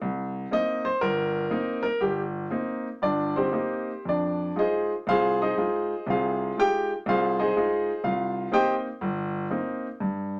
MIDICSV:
0, 0, Header, 1, 2, 480
1, 0, Start_track
1, 0, Key_signature, -3, "minor"
1, 0, Tempo, 497100
1, 17, Time_signature, 4, 2, 24, 8
1, 1937, Tempo, 510204
1, 5297, Tempo, 494234
1, 9980, End_track
2, 0, Start_track
2, 0, Title_t, "Grand piano"
2, 0, Program_c, 0, 0
2, 15, Note_on_c, 0, 36, 69
2, 433, Note_off_c, 0, 36, 0
2, 496, Note_on_c, 0, 58, 52
2, 499, Note_on_c, 0, 60, 47
2, 505, Note_on_c, 0, 63, 53
2, 513, Note_on_c, 0, 75, 92
2, 818, Note_off_c, 0, 75, 0
2, 820, Note_on_c, 0, 72, 88
2, 835, Note_off_c, 0, 58, 0
2, 836, Note_off_c, 0, 60, 0
2, 839, Note_off_c, 0, 63, 0
2, 975, Note_off_c, 0, 72, 0
2, 977, Note_on_c, 0, 31, 76
2, 978, Note_on_c, 0, 70, 87
2, 1393, Note_off_c, 0, 31, 0
2, 1454, Note_on_c, 0, 58, 56
2, 1456, Note_on_c, 0, 60, 54
2, 1459, Note_on_c, 0, 63, 68
2, 1736, Note_off_c, 0, 70, 0
2, 1763, Note_on_c, 0, 70, 88
2, 1790, Note_off_c, 0, 58, 0
2, 1791, Note_off_c, 0, 60, 0
2, 1793, Note_off_c, 0, 63, 0
2, 1926, Note_off_c, 0, 70, 0
2, 1937, Note_on_c, 0, 31, 67
2, 1941, Note_on_c, 0, 67, 72
2, 2130, Note_off_c, 0, 67, 0
2, 2350, Note_off_c, 0, 31, 0
2, 2407, Note_on_c, 0, 58, 53
2, 2414, Note_on_c, 0, 60, 46
2, 2414, Note_on_c, 0, 63, 58
2, 2745, Note_off_c, 0, 58, 0
2, 2748, Note_off_c, 0, 63, 0
2, 2749, Note_off_c, 0, 60, 0
2, 2891, Note_on_c, 0, 31, 67
2, 2897, Note_on_c, 0, 74, 77
2, 2906, Note_on_c, 0, 62, 61
2, 3208, Note_off_c, 0, 74, 0
2, 3212, Note_off_c, 0, 62, 0
2, 3212, Note_on_c, 0, 72, 67
2, 3217, Note_on_c, 0, 60, 58
2, 3217, Note_on_c, 0, 63, 50
2, 3222, Note_on_c, 0, 67, 58
2, 3313, Note_off_c, 0, 31, 0
2, 3356, Note_off_c, 0, 63, 0
2, 3358, Note_off_c, 0, 60, 0
2, 3366, Note_on_c, 0, 58, 53
2, 3370, Note_on_c, 0, 63, 56
2, 3372, Note_on_c, 0, 60, 51
2, 3717, Note_off_c, 0, 58, 0
2, 3719, Note_off_c, 0, 63, 0
2, 3720, Note_off_c, 0, 60, 0
2, 3831, Note_off_c, 0, 72, 0
2, 3836, Note_off_c, 0, 67, 0
2, 3864, Note_on_c, 0, 41, 55
2, 3896, Note_on_c, 0, 74, 66
2, 3898, Note_on_c, 0, 62, 46
2, 4283, Note_off_c, 0, 41, 0
2, 4330, Note_off_c, 0, 74, 0
2, 4331, Note_off_c, 0, 62, 0
2, 4336, Note_on_c, 0, 56, 48
2, 4340, Note_on_c, 0, 63, 48
2, 4345, Note_on_c, 0, 65, 52
2, 4367, Note_on_c, 0, 68, 59
2, 4367, Note_on_c, 0, 75, 69
2, 4371, Note_on_c, 0, 72, 55
2, 4665, Note_off_c, 0, 68, 0
2, 4665, Note_off_c, 0, 75, 0
2, 4667, Note_off_c, 0, 72, 0
2, 4675, Note_off_c, 0, 56, 0
2, 4677, Note_off_c, 0, 63, 0
2, 4679, Note_off_c, 0, 65, 0
2, 4818, Note_on_c, 0, 36, 66
2, 4835, Note_on_c, 0, 77, 101
2, 4839, Note_on_c, 0, 72, 78
2, 4841, Note_on_c, 0, 65, 70
2, 4843, Note_on_c, 0, 68, 82
2, 5133, Note_off_c, 0, 72, 0
2, 5136, Note_off_c, 0, 68, 0
2, 5136, Note_off_c, 0, 77, 0
2, 5138, Note_off_c, 0, 65, 0
2, 5147, Note_on_c, 0, 72, 67
2, 5147, Note_on_c, 0, 75, 75
2, 5150, Note_on_c, 0, 68, 60
2, 5152, Note_on_c, 0, 63, 66
2, 5230, Note_off_c, 0, 36, 0
2, 5284, Note_off_c, 0, 63, 0
2, 5291, Note_on_c, 0, 56, 53
2, 5298, Note_on_c, 0, 63, 46
2, 5302, Note_on_c, 0, 65, 61
2, 5631, Note_off_c, 0, 56, 0
2, 5635, Note_off_c, 0, 63, 0
2, 5637, Note_off_c, 0, 65, 0
2, 5744, Note_off_c, 0, 72, 0
2, 5744, Note_off_c, 0, 75, 0
2, 5746, Note_off_c, 0, 68, 0
2, 5770, Note_on_c, 0, 36, 60
2, 5773, Note_on_c, 0, 48, 62
2, 5806, Note_on_c, 0, 65, 56
2, 5807, Note_on_c, 0, 72, 53
2, 5807, Note_on_c, 0, 77, 70
2, 5809, Note_on_c, 0, 68, 58
2, 6196, Note_off_c, 0, 36, 0
2, 6198, Note_off_c, 0, 48, 0
2, 6246, Note_off_c, 0, 65, 0
2, 6246, Note_off_c, 0, 72, 0
2, 6246, Note_off_c, 0, 77, 0
2, 6247, Note_off_c, 0, 68, 0
2, 6263, Note_on_c, 0, 56, 51
2, 6265, Note_on_c, 0, 63, 44
2, 6266, Note_on_c, 0, 65, 51
2, 6286, Note_on_c, 0, 79, 97
2, 6287, Note_on_c, 0, 67, 78
2, 6587, Note_off_c, 0, 79, 0
2, 6588, Note_off_c, 0, 67, 0
2, 6601, Note_off_c, 0, 56, 0
2, 6602, Note_off_c, 0, 63, 0
2, 6602, Note_off_c, 0, 65, 0
2, 6739, Note_on_c, 0, 36, 75
2, 6764, Note_on_c, 0, 77, 90
2, 6766, Note_on_c, 0, 65, 67
2, 6766, Note_on_c, 0, 68, 66
2, 6767, Note_on_c, 0, 72, 68
2, 7055, Note_off_c, 0, 72, 0
2, 7056, Note_off_c, 0, 68, 0
2, 7061, Note_off_c, 0, 77, 0
2, 7061, Note_on_c, 0, 75, 76
2, 7062, Note_off_c, 0, 65, 0
2, 7066, Note_on_c, 0, 63, 63
2, 7069, Note_on_c, 0, 72, 69
2, 7071, Note_on_c, 0, 68, 66
2, 7153, Note_off_c, 0, 36, 0
2, 7218, Note_off_c, 0, 63, 0
2, 7226, Note_on_c, 0, 56, 57
2, 7229, Note_on_c, 0, 65, 67
2, 7232, Note_on_c, 0, 63, 56
2, 7553, Note_off_c, 0, 56, 0
2, 7554, Note_off_c, 0, 65, 0
2, 7556, Note_off_c, 0, 63, 0
2, 7651, Note_off_c, 0, 75, 0
2, 7655, Note_off_c, 0, 72, 0
2, 7656, Note_off_c, 0, 68, 0
2, 7687, Note_on_c, 0, 36, 67
2, 7690, Note_on_c, 0, 77, 72
2, 7695, Note_on_c, 0, 65, 59
2, 8097, Note_off_c, 0, 36, 0
2, 8128, Note_off_c, 0, 77, 0
2, 8131, Note_off_c, 0, 65, 0
2, 8151, Note_on_c, 0, 58, 55
2, 8154, Note_on_c, 0, 60, 54
2, 8159, Note_on_c, 0, 63, 61
2, 8170, Note_on_c, 0, 79, 86
2, 8173, Note_on_c, 0, 75, 75
2, 8174, Note_on_c, 0, 67, 74
2, 8175, Note_on_c, 0, 72, 71
2, 8359, Note_off_c, 0, 79, 0
2, 8361, Note_off_c, 0, 75, 0
2, 8362, Note_off_c, 0, 67, 0
2, 8363, Note_off_c, 0, 72, 0
2, 8492, Note_off_c, 0, 58, 0
2, 8493, Note_off_c, 0, 60, 0
2, 8496, Note_off_c, 0, 63, 0
2, 8633, Note_on_c, 0, 31, 79
2, 9057, Note_off_c, 0, 31, 0
2, 9111, Note_on_c, 0, 58, 52
2, 9116, Note_on_c, 0, 60, 54
2, 9118, Note_on_c, 0, 63, 58
2, 9456, Note_off_c, 0, 58, 0
2, 9459, Note_off_c, 0, 60, 0
2, 9460, Note_off_c, 0, 63, 0
2, 9596, Note_on_c, 0, 43, 64
2, 9980, Note_off_c, 0, 43, 0
2, 9980, End_track
0, 0, End_of_file